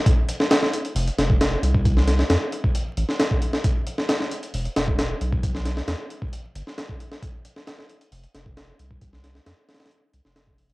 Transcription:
<<
  \new Staff \with { instrumentName = "Sub bass" } { \clef bass \time 4/4 \key f \lydian \tempo 4 = 134 r2 f,,16 r16 f,,8. r16 c,8~ | c,8. r16 f,16 r4 r16 a,,16 r4 r16 | r2 e,,16 r16 e,,8. r16 b,,8~ | b,,8. r16 e,16 r4 r16 g,,16 r4 r16 |
r2 f,,16 r16 f,,8. r16 c,8~ | c,8. r16 f,16 r4 r16 c,16 f,,4 r16 | }
  \new DrumStaff \with { instrumentName = "Drums" } \drummode { \time 4/4 <hh bd>8 hh16 sn16 <hh sn>16 sn16 hh16 hh16 hho16 hh16 <hh sn>16 bd16 <hh sn>8 hh16 bd16 | <hh bd>16 sn16 <hh sn>16 sn16 <hh sn>8 hh16 bd16 hh8 hh16 sn16 <hh sn>16 bd16 hh16 sn16 | <hh bd>8 hh16 sn16 <hh sn>16 sn16 hh16 hh16 hho16 hh16 <hh sn>16 bd16 <hh sn>8 hh16 bd16 | <hh bd>16 sn16 <hh sn>16 sn16 <hh sn>8 hh16 bd16 hh8 hh16 sn16 <hh sn>16 bd16 hh16 sn16 |
<hh bd>8 hh16 sn16 <hh sn>16 sn16 hh16 hh16 hho16 hh16 <hh sn>16 bd16 <hh sn>8 hh16 bd16 | <hh bd>16 sn16 <hh sn>16 sn16 <hh sn>8 <hh sn>32 <hh sn>32 <hh sn>32 <hh sn>32 hh8 hh16 sn16 <hh sn>16 bd16 hho16 hh16 | }
>>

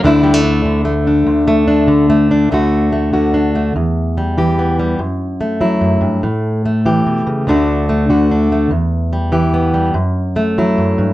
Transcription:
\new Staff \with { instrumentName = "Steel-string acoustic guitar" } { \time 3/4 \key d \major \tempo 4 = 145 << { <d a d' e'>8 g16 a16 d'4 a8 d'8 | r8 a8 d'4 a8 d'8 | <d a d' fis'>4 a8 fis'8 d'8 a8 | r4 g8 g'8 b8 g8 |
r4 a8 e'4. | r4 a8 g'4. | <d a d' fis'>4 a8 fis'8 d'8 a8 | r4 g8 g'8 b8 g8 |
r4 a8 e'4. | } \\ { d,4. d4. | d,4. d4. | d,4. d4. | e,4. e4. |
fis,4. fis8 fis,8 g,8 | a,4. e8 b,8 cis8 | d,4. d4. | e,4. e4. |
fis,4. fis8 fis,8 g,8 | } >> }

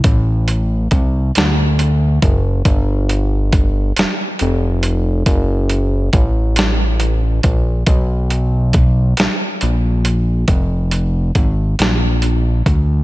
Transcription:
<<
  \new Staff \with { instrumentName = "Analog synth bass" } { \clef bass \time 6/8 \key f \mixolydian \tempo 4. = 46 a,,4 c,8 d,4 fis,,8 | g,,4. f,,8 f,,4 | fis,,4 a,,4. bes,,8 | b,,4. bes,,8 bes,,4 |
f,,4 aes,,8 bes,,4 d,8 | }
  \new DrumStaff \with { instrumentName = "Drums" } \drummode { \time 6/8 <hh bd>8 hh8 <hh bd>8 <hh sn>8 hh8 <hh bd>8 | <hh bd>8 hh8 <hh bd>8 <hh sn>8 hh8 hh8 | <hh bd>8 hh8 <hh bd>8 <hh sn>8 hh8 <hh bd>8 | <hh bd>8 hh8 <hh bd>8 <hh sn>8 hh8 hh8 |
<hh bd>8 hh8 <hh bd>8 <hh sn>8 hh8 <hh bd>8 | }
>>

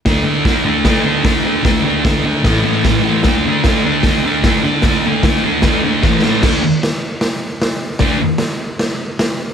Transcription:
<<
  \new Staff \with { instrumentName = "Distorted electric guitar" } { \time 4/4 \key a \phrygian \tempo 4 = 151 <d a d'>8 <d a d'>8 <d a d'>8 <d a d'>8 <d a d'>8 <d a d'>8 <d a d'>8 <d a d'>8 | <d a d'>8 <d a d'>8 <d a d'>8 <d a d'>8 <a, e a>8 <a, e a>8 <a, e a>8 <a, e a>8 | <d a d'>8 <d a d'>8 <d a d'>8 <d a d'>8 <d a d'>8 <d a d'>8 <d a d'>8 <d a d'>8 | <d a d'>8 <d a d'>8 <d a d'>8 <d a d'>8 <d a d'>8 <d a d'>8 <a, e a>8 <a, e a>8 |
<d a d'>8 r2. r8 | <d a d'>8 r2. r8 | }
  \new DrumStaff \with { instrumentName = "Drums" } \drummode { \time 4/4 <hho bd sn>4 <hho bd sn>4 <hho bd sn>4 <hho bd sn>4 | <hho bd sn>4 <hho bd sn>4 <hho bd sn>4 <hho bd sn>4 | <hho bd sn>4 <hho bd sn>4 <hho bd sn>4 <hho bd sn>4 | <hho bd sn>4 <hho bd sn>4 <hho bd sn>4 <bd sn>8 sn8 |
<cymc bd sn>4 <hho sn>4 <hho sn>4 <hho sn>4 | <hho bd sn>4 <hho sn>4 <hho sn>4 <hho sn>4 | }
>>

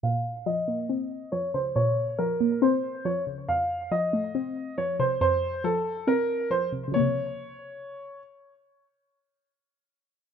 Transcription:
<<
  \new Staff \with { instrumentName = "Upright piano" } { \time 4/4 \key bes \minor \tempo 4 = 139 f''4 ees''2 des''8 c''8 | des''4 bes'4 c''4 des''8 r8 | f''4 ees''2 des''8 c''8 | c''4 a'4 bes'4 c''8 r8 |
des''2. r4 | r1 | }
  \new Staff \with { instrumentName = "Synth pluck" } { \clef bass \time 4/4 \key bes \minor bes,4 f8 bes8 c'4 f8 des8 | bes,4 f8 bes8 c'4 f8 des8 | f,4 f8 a8 c'4 f8 c8 | f,4 f4 c'4 f8 c8 |
<c des f bes>1~ | <c des f bes>1 | }
>>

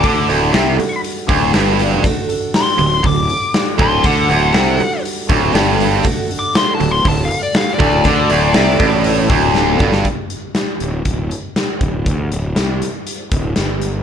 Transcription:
<<
  \new Staff \with { instrumentName = "Lead electric guitar" } { \time 4/4 \key d \mixolydian \tempo 4 = 120 d'''2 r2 | r4 c'''4 d'''4. c'''8 | fis''2 r2 | \tuplet 3/2 { r4 d'''8 c'''8 a''8 c'''8 a''8 f''8 d''8 f''8 d''4~ } |
d''2~ d''8 r4. | r1 | r1 | }
  \new Staff \with { instrumentName = "Steel-string acoustic guitar" } { \time 4/4 \key d \mixolydian <d a d' fis' a'>8 <d' fis' a'>8 <a d' fis' a'>8 <d' fis' a'>4. <a d' fis' a'>8 <d' fis' a'>8 | <d a d' fis' a'>8 <d' fis' a'>8 <a d' fis' a'>8 <d' fis' a'>4. <a d' fis' a'>8 <d' fis' a'>8 | <d a d' fis' a'>8 <d' fis' a'>8 <a d' fis' a'>8 <d' fis' a'>4. <a d' fis' a'>8 <d' fis' a'>8 | <d a d' fis' a'>8 <d' fis' a'>8 <a d' fis' a'>8 <d' fis' a'>4. <a d' fis' a'>8 <d' fis' a'>8 |
<d a d' fis' a'>8 <d' fis' a'>8 <a d' fis' a'>8 <d' fis' a'>4. <a d' fis' a'>8 <d' fis' a'>8 | r1 | r1 | }
  \new Staff \with { instrumentName = "Distorted electric guitar" } { \clef bass \time 4/4 \key d \mixolydian d8 d,8 c8 r4 d,8 g,4 | r4. d,8 d,8 r4 d,8 | d8 d,8 c8 r4 d,8 g,4 | r4. d,8 d,8 r4 d,8 |
d8 d,8 c8 a,4 d,4 g,8 | r1 | r1 | }
  \new Staff \with { instrumentName = "Overdriven electric guitar" } { \clef bass \time 4/4 \key d \mixolydian d8 d,8 c8 r4 d,8 g,4 | r4. d,8 d,8 r4 d,8 | d8 d,8 c8 r4 d,8 g,4 | r4. d,8 d,8 r4 d,8 |
d8 d,8 c8 a,4 d,4 g,8 | r1 | r1 | }
  \new Staff \with { instrumentName = "Fingered electric bass" } { \clef bass \time 4/4 \key d \mixolydian d,8 d,,8 c,8 r4 d,,8 g,,4 | r4. d,,8 d,,8 r4 d,,8 | d,8 d,,8 c,8 r4 d,,8 g,,4 | r4. d,,8 d,,8 r4 d,,8 |
d,8 d,,8 c,8 a,,4 d,,4 g,,8 | r4. d,,8 d,,8 r4 d,,8 | d,8 d,,8 c,8 r4 d,,8 g,,4 | }
  \new DrumStaff \with { instrumentName = "Drums" } \drummode { \time 4/4 <hho bd>8 hho8 <hho sn>8 hho8 hho8 <hho bd>8 <hho sn>8 hho8 | <hho bd>8 hho8 <hho sn>8 hho8 <hho bd>8 hho8 <hho sn>8 <hho bd>8 | <hho bd>8 hho8 <hho sn>8 hho8 hho8 <hho bd>8 <hho sn>8 hho8 | <hho bd>8 hho8 <hho sn>8 hho8 <hho bd>8 hho8 <hho sn>8 <hho bd>8 |
<hho bd>8 hho8 <hho sn>8 <hho bd>8 hho8 <hho bd>8 sn8 bd16 sn16 | <hh bd>8 hh8 <hh sn>8 hh8 <hh bd>8 hh8 <hh sn>8 <hh bd>8 | <hh bd>8 hh8 <hh sn>8 hh8 hh8 <hh bd>8 <hh sn>8 hh8 | }
>>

